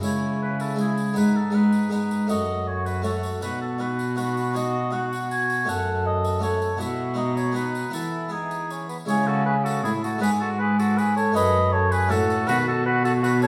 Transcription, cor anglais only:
0.03 E4
0.79 E4
1.15 D#4
1.55 D#4
1.93 D#4
2.30 F#4
2.70 F#4
3.05 F#4
3.43 F#4
3.81 F#4
4.17 F#4
4.57 F#4
4.93 F#4
5.68 A4
6.43 A4
6.80 F#4
7.17 D#4
7.56 D#4
7.94 E4
8.33 D#4
8.71 C#4
8.89 B3
9.09 G#4
9.28 F#4
9.46 G#4
9.64 F#4
9.84 E4
10.04 F#4
10.22 G#4
10.41 F#4
10.60 G#4
10.80 F#4
10.98 G#4
11.17 A4
11.35 B4
11.74 A4
11.91 G#4
12.10 F#4
12.49 F#4
12.67 F#4
12.86 F#4
13.04 F#4
13.23 F#4
13.42 A4

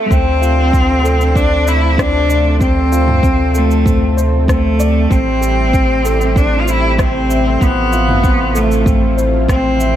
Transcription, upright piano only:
Already playing: C4 A4 C5 E5
0.10 C4
0.42 F4
0.72 C4
1.04 A4
1.35 C4
1.66 C5
1.98 C4
2.29 D5
2.61 C4
2.92 F4
3.23 C4
3.54 A4
3.85 C4
4.17 C5
4.48 C4
4.79 D5
5.10 C4
5.41 G4
5.73 C4
6.05 A4
6.36 C4
6.67 C5
6.98 C4
7.30 E5
7.60 C4
7.92 F4
8.23 C4
8.54 A4
8.85 C4
9.17 C5
9.48 C4
9.80 E5

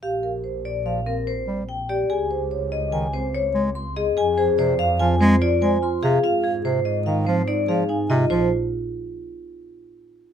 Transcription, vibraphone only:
0.03 F5
0.65 D5
0.86 F5
1.06 A#4
1.27 C5
1.69 G5
1.90 D5
2.10 G#5
2.72 D#5
2.92 G#5
3.13 C5
3.35 C#5
3.75 C6
3.96 D#5
4.18 G#5
4.38 G#4
4.59 C5
4.79 F5
5.00 G#5
5.21 C5
5.42 D5
5.62 G#5
5.83 C6
6.03 F5
6.24 F5
6.44 G#4
6.65 C5
6.85 D#5
7.06 F5
7.27 C5
7.48 D5
7.69 F5
7.89 G#5
8.10 D#5
8.30 C5

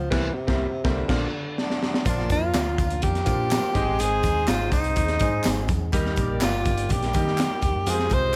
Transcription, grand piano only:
0.10 G3 A#3 C4 E4
0.47 G3 A#3 C4 E4
0.84 G3 A#3 C4 E4
1.08 F3 A#3 D4 F4
2.05 F3 A#3 D4 F4
3.25 F3 A#3 D4 F4
3.74 G#3 C4 D#4 G4
3.81 G#4
5.21 G#3 C4 D#4 G#4
5.92 G3 A#3 D#4 G4
7.13 G3 A#3 D#4 G4
7.87 G#3 C4 F4 F#4
7.93 G4

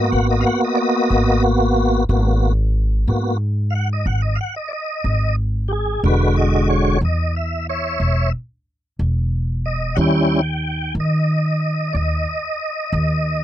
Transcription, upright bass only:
0.13 G#1
1.10 G#1
2.09 G#1
3.08 G#2
4.06 G#1
5.04 G#1
6.04 E1
7.01 E2
8.00 E1
8.99 E1
9.97 D#2
10.95 D#3
11.94 D#2
12.92 D#2

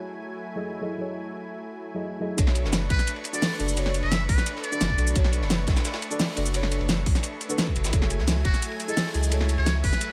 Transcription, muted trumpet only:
2.90 B4
3.34 D5
4.03 E5
4.29 B4
4.63 D5
8.45 F#4
8.89 A4
9.58 C#5
9.84 B4

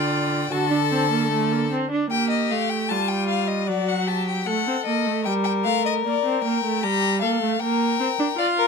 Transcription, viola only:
Already playing: F4
0.50 F#4
0.70 D4
0.91 C4
1.11 A#3
1.31 A3
1.52 A#3
1.71 C4
1.91 D4
2.11 A#3
2.51 A3
2.91 G3
3.69 F#3
4.48 A3
4.67 C4
4.87 A#3
5.07 A3
5.26 G3
5.65 A3
6.05 A#3
6.24 C4
6.44 A#3
6.64 A3
6.84 G3
7.22 A#3
7.42 A3
7.61 A#3
8.00 C4
8.19 D4
8.37 F4

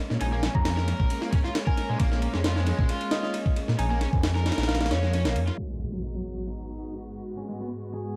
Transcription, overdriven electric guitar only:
0.21 D#4
0.33 A#3
0.43 C#4
0.77 A#4
1.22 A#3
1.33 C#4
1.44 F4
1.67 A#4
1.89 G#3
2.00 A#3
2.34 G#3
2.45 F4
2.56 G#3
2.90 F4
3.79 D#4
3.90 A#3
4.01 C#4
4.35 A#4
4.80 A#3
4.91 C#4
5.03 G#3
5.14 C#4
5.25 A#3
5.48 F4
5.58 G#3
5.92 F#3
6.03 D#4
6.15 F#3
6.47 D#4
7.37 C#4
7.49 G#3
7.60 B3
7.94 G#4

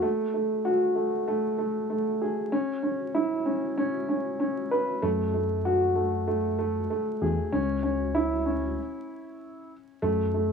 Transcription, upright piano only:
0.02 A3
0.34 A3
0.65 F#4
0.95 A3
1.28 A3
1.58 A3
1.90 A3
2.22 G#4
2.52 C#4
2.83 C#4
3.14 E4
3.45 C#4
3.77 C#4
4.09 C#4
4.39 C#4
4.71 B4
5.02 A3
5.34 A3
5.65 F#4
5.95 A3
6.27 A3
6.59 A3
6.90 A3
7.22 G#4
7.52 C#4
7.83 C#4
8.15 E4
8.46 C#4
10.02 A3
10.34 A3

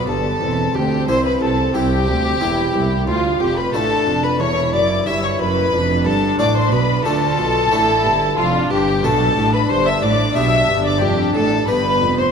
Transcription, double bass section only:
0.08 G1
0.41 E1
0.75 D2
1.08 C2
1.42 C2
1.76 C2
2.09 D2
2.42 E1
2.75 C2
3.08 D2
3.42 F1
3.75 A1
4.08 F1
4.41 E1
4.75 F#1
5.07 G1
5.40 F#1
5.74 F1
6.06 G1
6.40 A1
6.72 B1
7.06 D2
7.39 B1
7.72 A1
8.06 G1
8.39 F1
8.72 G1
9.04 B1
9.37 A1
9.70 G1
10.04 A1
10.37 B1
10.70 G1
11.03 F1
11.36 A1
11.69 G1
12.02 F1

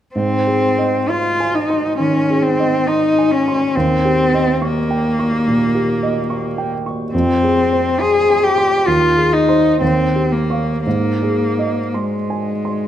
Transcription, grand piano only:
0.15 G#2
0.47 G#4
0.79 D#5
1.10 C6
1.40 G#5
1.70 C6
1.99 D#3
2.30 G#4
2.59 D#5
2.88 C6
3.18 G#5
3.48 C6
3.77 D#2
4.05 G4
4.34 D#5
4.62 C#6
4.91 G5
5.19 C#6
5.47 A#2
5.75 G4
6.03 D#5
6.30 C#6
6.58 G5
6.86 C#6
7.14 F2
7.43 G#4
7.73 C5
8.01 C6
8.30 G#5
8.58 C6
8.88 D#2
9.17 G#4
9.49 C5 C6
9.81 D#2
10.16 G4
10.50 F5 C#6
10.86 G#2
11.22 G#4
11.59 D#5
11.94 C6
12.30 G#5
12.65 C6

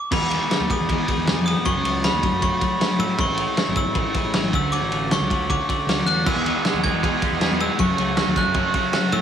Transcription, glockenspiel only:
Already playing: D6
0.13 B5
0.71 D#6
1.46 D#6
1.65 C#6
2.04 B5
2.43 C#6
3.00 E6
3.21 C#6
3.77 E6
4.55 E6
4.72 D6
5.12 C#6
5.50 D6
6.07 F#6
6.27 E6
6.84 G#6
7.61 E6
7.80 C#6
8.37 F#6
9.13 E6

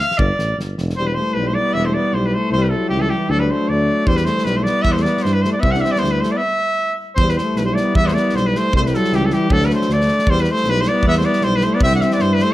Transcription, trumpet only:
0.00 F5
0.18 D5
0.97 C5
1.07 B4
1.14 C5
1.34 B4
1.47 C5
1.54 D5
1.73 E5
1.85 C5
1.94 D5
2.14 C5
2.26 B4
2.34 C5
2.52 C5
2.63 B4
2.69 A4
2.89 G4
3.00 A4
3.10 G4
3.30 A4
3.40 B4
3.51 C5
3.69 D5
4.07 C5
4.17 B4
4.25 C5
4.45 B4
4.56 C5
4.63 D5
4.82 E5
4.92 C5
5.02 D5
5.23 C5
5.33 B4
5.42 C5
5.52 D5
5.61 E5
5.71 F#5
5.81 E5
5.91 D5
5.99 C5
6.11 B4
6.21 C5
6.31 D5
6.37 E5
7.16 C5
7.30 B4
7.37 C5
7.57 B4
7.65 C5
7.74 D5
7.95 E5
8.07 C5
8.13 D5
8.35 C5
8.47 B4
8.57 C5
8.76 C5
8.83 B4 C5
8.95 A4
9.15 G4
9.25 A4
9.33 G4
9.52 A4
9.65 B4
9.74 C5
9.93 D5
10.30 C5
10.41 B4
10.51 C5
10.70 B4
10.81 C5
10.88 D5
11.08 E5
11.18 C5
11.25 D5
11.44 C5
11.56 B4
11.63 C5
11.74 D5
11.83 E5
11.95 F#5
12.01 E5
12.13 D5
12.21 C5
12.34 B4
12.42 C5

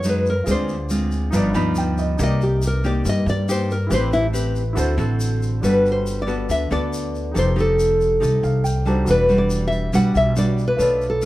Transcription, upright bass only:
Already playing: F#2
0.47 D2
1.33 G1
1.54 D2
2.19 C2
3.05 G2
3.26 G2
3.90 A1
4.77 D2
4.98 A1
5.63 G1
6.49 D2
6.71 D2
7.36 F1
8.22 C2
8.43 C2
9.08 E1
9.93 B1
10.15 B1
10.79 B1

